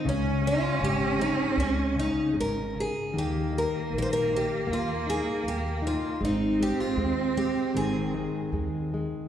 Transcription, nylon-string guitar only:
\new Staff \with { instrumentName = "Nylon-string guitar" } { \clef bass \time 2/4 \key aes \major \tempo 4 = 78 des8 aes8 des8 aes8 | aes8 des8 aes8 des8 | ees8 ees'8 bes8 ees'8 | bes8 ees'8 bes8 ees'8 |
aes8 aes8 aes8 aes8 | ees8 aes8 aes8 aes8 | }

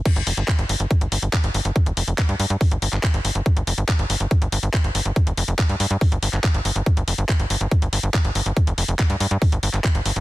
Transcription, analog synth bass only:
\new Staff \with { instrumentName = "Analog synth bass" } { \clef bass \time 4/4 \tempo 4 = 141 r16 g,,16 f,,16 g,,16 r16 g,,16 g,,16 g,,16 r16 g,,16 g,,16 g,,16 r16 g,,16 g,,16 g,,16 | r16 f,,16 f,,16 f,,16 r16 g,16 g,16 g,16 r16 g,,16 g,,16 g,,16 r16 g,,16 g,,16 g,,16 | r16 g,,16 f,,16 g,,16 r16 g,,16 g,,16 g,,16 r16 g,,16 g,,16 g,,16 r16 g,,16 g,,16 g,,16 | r16 f,,16 f,,16 f,,16 r16 g,16 g,16 g,16 r16 g,,16 g,,16 g,,16 r16 g,,16 g,,16 g,,16 |
r16 g,,16 f,,16 g,,16 r16 g,,16 g,,16 g,,16 r16 g,,16 g,,16 g,,16 r16 g,,16 g,,16 g,,16 | r16 f,,16 f,,16 f,,16 r16 g,16 g,16 g,16 r16 g,,16 g,,16 g,,16 r16 g,,16 g,,16 g,,16 | }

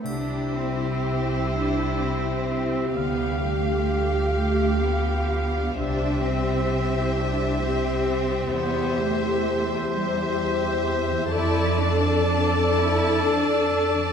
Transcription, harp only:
\new Staff \with { instrumentName = "Harp" } { \time 6/8 \key c \major \tempo 4. = 42 << { c16 g16 c'16 e'16 g'16 e'16 g'16 e'16 g'16 e'16 c'16 g16 | d16 d'16 g16 f'16 g'16 f'16 g'16 f'16 g'16 f'16 g16 d'16 | c16 g16 c'16 e'16 g'16 e'16 g'16 e'16 g'16 e'16 c'16 g16 | e,16 e16 c'16 e'16 g'16 e'16 g'16 e'16 g'16 e'16 c'16 e16 |
\key d \dorian f,16 f16 a16 d'16 a'16 d'16 a'16 d'16 a'16 d'16 a16 f16 | } \\ { <c' e'>2. | r2. | r2. | r2. |
r2. | } >> }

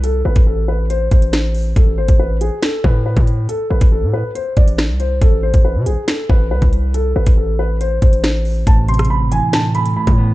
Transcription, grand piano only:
\new Staff \with { instrumentName = "Grand piano" } { \time 4/4 \key a \minor \tempo 4 = 139 a'8 b'8 a'8 b'8 c''8 c''4. | a'8 c''8 b'8 gis'8 a'8 b'8 b'4 | a'8 b'8 a'8 b'8 c''8 d''4 c''8 | a'8 c''8 b'8 gis'8 r8 b'8 b'4 |
a'8 b'8 a'8 b'8 c''8 c''4. | a''8 c'''8 b''8 gis''8 a''8 b''8 b''4 | }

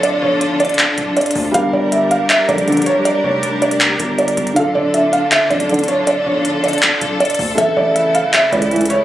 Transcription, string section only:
\new Staff \with { instrumentName = "String section" } { \time 4/4 \key d \minor \tempo 4 = 159 << { a'1 | d'1~ | d'1 | a'1~ |
a'1~ | a'1 | } \\ { <d d' f'>1 | <g g' bes'>1~ | <g g' bes'>1 | <d d' f'>1~ |
<d d' f'>1 | <cis e'>1 | } >> }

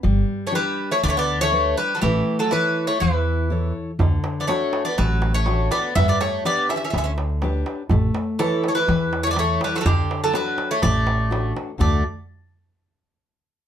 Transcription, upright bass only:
\new Staff \with { instrumentName = "Upright bass" } { \clef bass \time 4/4 \key d \major \tempo 4 = 123 g,,8 r4. d,2 | a,,8 r4. e,2 | d,8 r4. a,,2 | g,,8 r4. d,2 |
a,,8 r4. e,2 | d,8 r4. a,,2 | d,8 r2. r8 | }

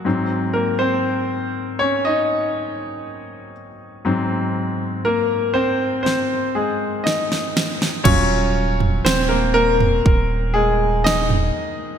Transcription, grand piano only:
<<
  \new Staff \with { instrumentName = "Grand piano" } { \time 4/4 \key aes \mixolydian \tempo 4 = 60 r8 <bes bes'>16 <c' c''>4 <des' des''>16 <ees' ees''>4. r8 | r4 <bes bes'>8 <c' c''>8 <c' c''>8 <aes aes'>8 <ees' ees''>4 | des''4 <c' c''>16 <bes bes'>16 <bes bes'>4 <aes aes'>8 <ees' ees''>4 | }
  \new Staff \with { instrumentName = "Grand piano" } { \clef bass \time 4/4 \key aes \mixolydian <aes, ges c'>8 r2. r8 | <aes, ges c'>1 | <ges des' f'>1 | }
>>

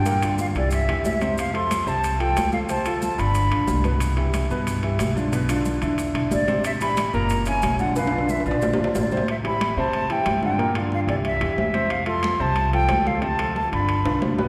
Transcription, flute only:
\new Staff \with { instrumentName = "Flute" } { \time 4/4 \key a \minor \tempo 4 = 182 g''4 f''8 d''8 e''4 e''4 | f''8 c'''4 a''4 g''4 f''8 | a''4 a''8 b''2 r8 | r1 |
r2. d''4 | e''8 b''4 bes''4 gis''4 fis''8 | f''4 e''8 d''4. d''4 | e''8 b''4 a''4 g''4 g''8~ |
g''4 f''8 d''8 e''4 e''4 | f''8 c'''4 a''4 g''4 f''8 | a''4 a''8 b''2 r8 | }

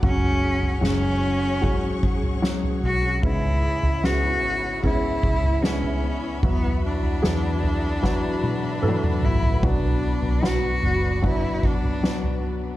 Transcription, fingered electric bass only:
\new Staff \with { instrumentName = "Fingered electric bass" } { \clef bass \time 4/4 \key cis \phrygian \tempo 4 = 75 fis,,4 fis,,2~ fis,,8 b,,8 | cis,8. cis,8. gis,,4 cis,4. | e,4 e,2~ e,8 a,,8 | b,,8. b,,8. fis,,4 b,,4. | }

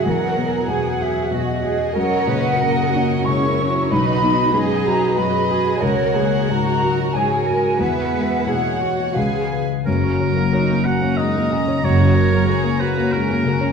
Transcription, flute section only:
\new Staff \with { instrumentName = "Flute section" } { \time 3/4 \key cis \dorian \tempo 4 = 92 fis''8. ais''16 gis''16 fis''16 e''8 dis''4 | fis''2 cis'''4 | b''4. ais''8 b''4 | cis''4 ais''4 gis''4 |
fis''2 eis''4 | \key fis \major r2. | r2. | }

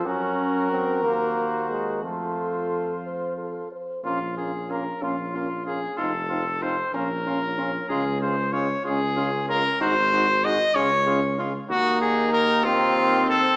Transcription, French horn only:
\new Staff \with { instrumentName = "French horn" } { \time 6/8 \key bes \minor \tempo 4. = 62 bes'2. | a'4. c''8 a'8 c''8 | des'8 des'8 des'8 des'8 des'8 des'8 | ees'8 ees'8 ees'8 des'8 des'8 des'8 |
des'8 des'8 des'8 des'8 des'8 des'8 | ees'8 ees'8 ees'8 des'8 des'8 des'8 | bes4. c'4. | }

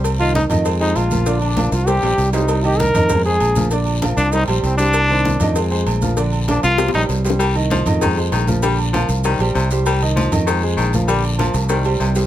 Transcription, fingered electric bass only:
\new Staff \with { instrumentName = "Fingered electric bass" } { \clef bass \time 4/4 \key c \minor \tempo 4 = 195 c,4. f,4. bes,,4~ | bes,,4. c,4 bes,,8 c,4~ | c,4. f,4. bes,,4~ | bes,,4. c,4 bes,,8 c,4~ |
c,4. f,4. bes,,4~ | bes,,4. c,4 bes,,8 c,4~ | c,4. f,4. bes,,4~ | bes,,4. c,4 bes,,8 c,4~ |
c,4. f,4. bes,,4~ | bes,,4. c,4. c,4 | }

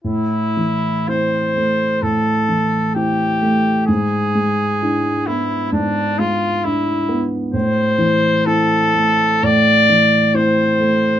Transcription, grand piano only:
\new Staff \with { instrumentName = "Grand piano" } { \time 4/4 \key a \minor \tempo 4 = 65 a,8 e8 <c' e'>8 a8 a,8 e8 <c' e'>8 a8 | gis,8 gis8 <d' e'>8 b8 gis,8 gis8 <d' e'>8 b8 | a,8 e8 <c' e'>8 a8 a,8 e8 <c' e'>8 a8 | }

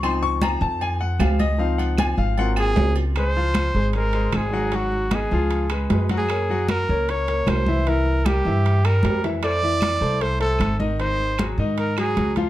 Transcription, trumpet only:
\new Staff \with { instrumentName = "Trumpet" } { \time 4/4 \key des \major \tempo 4 = 153 r1 | r2 r8 aes'4 r8 | c''2 bes'4 aes'4 | ges'4 aes'4. r8 \tuplet 3/2 { r4 aes'8~ } |
aes'4 bes'4 des''4 c''4 | bes'4 g'4. bes'4 r8 | d''2 c''8 a'4 r8 | c''4. r8 bes'8 aes'4 r8 | }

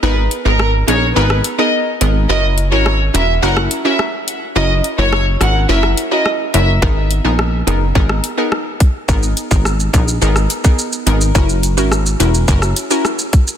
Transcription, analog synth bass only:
\new Staff \with { instrumentName = "Analog synth bass" } { \clef bass \time 4/4 \key gis \minor \tempo 4 = 106 gis,,8 r16 gis,,8. ais,,8 gis,,8 r4 gis,,8 | fis,,8. gis,,8. e,,8 fis,,8 r4. | fis,,8 r16 fis,,8. gis,,8 fis,,8 r4 fis,,8 | gis,,8. ais,,8. fis,,8 gis,,8 r4. |
gis,,8 r16 gis,,8. ais,,8 gis,,8 r4 gis,,8 | fis,,8. gis,,8. e,,8 fis,,8 r4. | }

